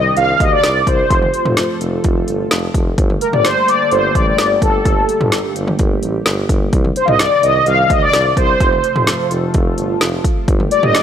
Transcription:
Already playing: analog synth pad C3 D#3 G3 D4 G4, analog polysynth D#5
0.17 tuba C2, analog polysynth F5, closed hi-hat
0.40 tuba D2, analog polysynth D#5, kick, closed hi-hat
0.52 analog polysynth D5
0.64 tuba C2, snare, closed hi-hat
0.87 tuba C2, analog polysynth C5, kick, closed hi-hat
1.10 tuba F1, analog synth pad F3 A3 F4 A4, kick, closed hi-hat
1.22 mid tom
1.34 closed hi-hat
1.46 tuba F1, mid tom
1.57 snare, closed hi-hat
1.81 tuba F1, closed hi-hat
2.04 tuba F1, kick, closed hi-hat
2.28 tuba G1, closed hi-hat
2.51 tuba F1, snare, closed hi-hat
2.74 tuba F1, kick, closed hi-hat
2.98 tuba G1, analog synth pad D3 G3 A#3 G4, kick, closed hi-hat
3.10 mid tom
3.21 analog polysynth A#4, closed hi-hat
3.33 tuba G1, analog polysynth D5, mid tom
3.45 analog polysynth C5, snare, closed hi-hat
3.68 analog polysynth D5, closed hi-hat
3.91 tuba G1, analog polysynth C5, closed hi-hat
4.15 tuba A1, analog polysynth D5, kick, closed hi-hat
4.27 analog polysynth D5
4.38 tuba G1, snare, closed hi-hat
4.62 tuba G1, analog polysynth A4, kick, closed hi-hat
4.85 tuba G1, kick, closed hi-hat
5.09 closed hi-hat
5.21 tuba G1, mid tom
5.32 snare, closed hi-hat
5.56 tuba G1, closed hi-hat
5.68 mid tom
5.79 tuba G1, kick, closed hi-hat
6.02 tuba A1, closed hi-hat
6.26 tuba G1, snare, closed hi-hat
6.49 tuba G1, kick, closed hi-hat
6.73 tuba C2, analog synth pad C3 D#3 D4, kick, closed hi-hat
6.85 mid tom
6.96 analog polysynth C5, closed hi-hat
7.05 tuba C2, analog polysynth D#5 F5, mid tom
7.19 analog polysynth D5, snare, closed hi-hat
7.43 tuba C2, analog polysynth D#5, closed hi-hat
7.66 tuba C2, analog polysynth F5, closed hi-hat
7.90 tuba D2, analog polysynth D#5, kick, closed hi-hat
8.02 analog polysynth D5
8.13 tuba C2, snare, closed hi-hat
8.37 tuba C2, analog polysynth C5, kick, closed hi-hat
8.60 tuba F1, analog synth pad F3 A3 F4 A4, kick, closed hi-hat
8.72 mid tom
8.84 closed hi-hat
8.96 tuba F1, mid tom
9.07 snare, closed hi-hat
9.31 tuba F1, closed hi-hat
9.54 tuba F1, kick, closed hi-hat
9.78 tuba G1, closed hi-hat
10.01 tuba F1, snare, closed hi-hat
10.24 kick, closed hi-hat
10.48 tuba G1, analog synth pad D3 G3 A3 A#3 G4, kick, closed hi-hat
10.60 mid tom
10.71 analog polysynth D5, closed hi-hat
10.83 tuba G1, analog polysynth D#5, mid tom
10.95 analog polysynth D5, snare, closed hi-hat

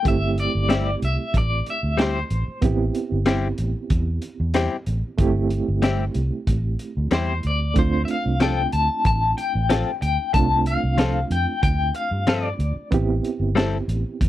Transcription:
0.03 fingered electric bass G1, reed electric piano A3 C4 E4 G4, kick, closed hi-hat
0.08 clean electric guitar E5
0.38 clean electric guitar D5, closed hi-hat
0.55 fingered electric bass G1
0.69 clean electric guitar G3 C4 E4 G4, snare, closed hi-hat
1.02 fingered electric bass C2, clean electric guitar E5, closed hi-hat
1.34 fingered electric bass A1, clean electric guitar D5, kick, closed hi-hat
1.66 clean electric guitar E5, closed hi-hat
1.83 fingered electric bass D2
1.97 clean electric guitar G3 C4 E4 G4, snare, closed hi-hat
2.02 clean electric guitar C5
2.30 fingered electric bass A1, closed hi-hat
2.48 muted fingered electric bass stroke
2.62 fingered electric bass A1, reed electric piano B3 C4 E4 G4, kick, closed hi-hat
2.95 closed hi-hat
3.12 fingered electric bass G1
3.26 clean electric guitar G3 C4 E4 G4, snare, closed hi-hat
3.58 fingered electric bass A1, closed hi-hat
3.90 fingered electric bass E2, kick, closed hi-hat
4.22 closed hi-hat
4.40 fingered electric bass E2
4.54 clean electric guitar G3 C4 E4 G4, snare, closed hi-hat
4.86 fingered electric bass A1, closed hi-hat
5.18 fingered electric bass G1, reed electric piano A3 C4 E4 G4, kick, closed hi-hat
5.50 closed hi-hat
5.68 fingered electric bass G1
5.82 clean electric guitar G3 C4 E4 G4, snare, closed hi-hat
6.14 fingered electric bass C2, closed hi-hat
6.47 fingered electric bass A1, kick, closed hi-hat
6.79 closed hi-hat
6.97 fingered electric bass D2
7.11 fingered electric bass E2, clean electric guitar G3 C4 E4 G4 C5, snare, closed hi-hat
7.43 fingered electric bass D2, clean electric guitar D5, closed hi-hat
7.74 fingered electric bass D2, reed electric piano A3 C4 D4, kick, closed hi-hat
7.78 reed electric piano F4, clean electric guitar C5
8.05 clean electric guitar E5, closed hi-hat
8.11 clean electric guitar F5
8.26 fingered electric bass C2
8.40 clean electric guitar F3 C4 F4 A4 G5, snare, closed hi-hat
8.72 fingered electric bass D2, clean electric guitar A5, closed hi-hat
9.05 fingered electric bass A1, clean electric guitar A5, kick, closed hi-hat
9.38 clean electric guitar G5, closed hi-hat
9.55 fingered electric bass A1
9.70 clean electric guitar F3 C4 F4 A4, snare, closed hi-hat
10.02 fingered electric bass D2, clean electric guitar G5, closed hi-hat
10.34 fingered electric bass C2, reed electric piano A3 C4 D4 F4, clean electric guitar A5, kick, closed hi-hat
10.66 clean electric guitar F5, closed hi-hat
10.84 fingered electric bass C2
10.98 clean electric guitar F3 C4 F4 A4, snare, closed hi-hat
11.30 fingered electric bass F2, clean electric guitar G5, closed hi-hat
11.63 fingered electric bass D2, clean electric guitar G5, kick, closed hi-hat
11.95 clean electric guitar F5, closed hi-hat
12.11 fingered electric bass G2
12.27 clean electric guitar F3 C4 F4 A4 D5, snare, closed hi-hat
12.59 fingered electric bass D2, closed hi-hat
12.76 muted fingered electric bass stroke
12.91 fingered electric bass A1, reed electric piano B3 C4 E4 G4, kick, closed hi-hat
13.24 closed hi-hat
13.40 fingered electric bass G1
13.55 clean electric guitar G3 C4 E4 A4, snare, closed hi-hat
13.88 fingered electric bass A1, closed hi-hat
14.21 fingered electric bass E2, kick, closed hi-hat

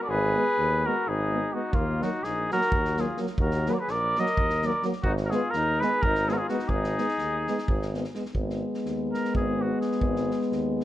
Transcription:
0.01 flugelhorn A#4 D5
0.08 tuba G#1, flugelhorn G#4 B4
0.36 euphonium G#3, french horn B3
0.58 tuba D#2
0.84 euphonium G#3, french horn B3, flugelhorn F#4 A#4
1.07 tuba G#1, flugelhorn D#4 G#4
1.31 euphonium G#3, french horn B3
1.52 euphonium G#3, french horn B3, flugelhorn D#4 F#4
1.73 tuba D#2, flugelhorn A#3 F4, kick
2.02 euphonium F#3, french horn A#3, flugelhorn D#4 F#4, snare
2.23 tuba A#1, flugelhorn D#4 G#4, snare
2.51 euphonium F#3, french horn A#3, flugelhorn F#4 A#4, snare
2.61 snare
2.72 tuba D#2, kick
2.85 snare
2.97 euphonium F#3, french horn A#3, flugelhorn F4 G#4, snare
3.17 euphonium F#3, french horn A#3, snare
3.27 snare
3.38 tuba D#2, flugelhorn F#4 A#4, kick
3.51 snare
3.66 euphonium F#3, french horn A#3, flugelhorn G#4 B4, snare
3.74 flugelhorn A#4 D5
3.79 flugelhorn G#4 B4
3.88 tuba A#1, flugelhorn D5, snare
3.92 flugelhorn A#4
4.16 euphonium F#3, french horn A#3, flugelhorn D#5, snare
4.20 flugelhorn A#4
4.26 snare
4.37 tuba D#2, kick
4.50 snare
4.62 euphonium F#3, french horn A#3, snare
4.66 flugelhorn A#4 D5
4.83 euphonium F#3, french horn A#3, snare
4.92 snare
5.03 tuba G#1, flugelhorn D#4 F#4, kick
5.17 snare
5.26 flugelhorn F#4 A#4
5.30 euphonium G#3, french horn B3, flugelhorn G#4, snare
5.35 flugelhorn F4
5.51 tuba D#2, flugelhorn A#4, snare
5.57 flugelhorn D#4
5.80 euphonium G#3, french horn B3, flugelhorn B4, snare
5.84 flugelhorn G#4
6.02 tuba G#1, flugelhorn D#4 A#4, kick
6.15 snare
6.27 euphonium G#3, french horn B3, flugelhorn F4 G#4, snare
6.33 flugelhorn F#4 A#4
6.38 flugelhorn F4 G#4
6.49 euphonium G#3, french horn B3, flugelhorn D#4 F#4, snare
6.59 snare
6.69 tuba G#1, flugelhorn D#4 G#4, kick
6.84 snare
6.97 euphonium G#3, french horn B3, snare
7.08 snare
7.18 tuba D#2, snare
7.47 euphonium G#3, french horn B3, snare
7.58 snare
7.68 tuba G#1, kick
7.82 snare
7.94 euphonium G#3, french horn B3, snare
8.04 snare
8.15 euphonium G#3, french horn B3, snare
8.25 snare
8.34 tuba G#1, euphonium G#3, french horn B3, kick
8.50 snare
8.74 snare
8.85 tuba D#2, snare
9.13 flugelhorn A#4, snare
9.25 snare
9.35 tuba G#1, flugelhorn G#4, kick
9.62 flugelhorn F#4
9.81 flugelhorn G#4, snare
9.92 snare
10.01 tuba G#1, kick
10.16 snare
10.31 snare
10.41 snare
10.51 tuba D#2, snare
10.80 snare

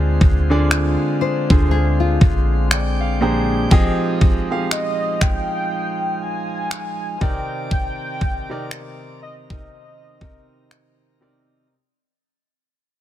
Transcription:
Already playing: 808-style bass D2, grand piano D3 D4 F4 G#4 C5 F5, pipe organ D3 G#3 C4 F4
0.21 808-style bass D2, kick
0.50 grand piano D3 D4 F4 G#4 D5
0.71 finger snap
1.21 nylon-string guitar C5
1.50 808-style bass D2, grand piano D3 D4 F4 G#4 C5, kick
1.71 nylon-string guitar G#4
2.00 nylon-string guitar F4
2.21 808-style bass A#1, kick
2.71 grand piano D5, pipe organ G5, finger snap
3.01 grand piano F5
3.21 grand piano A#2 F3 D4 G4 G#4 C5 A#5
3.71 pipe organ F3 G#3 D#4 F4, grand piano F3 C4 G4 G#4 D#5, kick
4.21 kick
4.50 grand piano F3 C4 G4 G#4 F5
4.71 soft synth lead D#5, finger snap
5.21 soft synth lead G5, finger snap, kick
6.22 soft synth lead G#5
6.71 finger snap
7.21 grand piano C3 C4 D#4 A#4 D5, pipe organ D#3 C4 A#4 D5, soft synth lead G5, kick
7.71 soft synth lead G5, kick
8.21 kick
8.50 grand piano C3 C4 D#4 A#4 D5
8.71 finger snap
9.21 pipe organ D#4, soft synth lead D#5
9.50 grand piano C3 C4 D#4 A#4 D#5, soft synth lead D#5, kick
10.21 grand piano C3 C4 D#4 A#4 D#5, kick
10.71 finger snap
11.21 grand piano C3 C4 D#4 A#4 D5

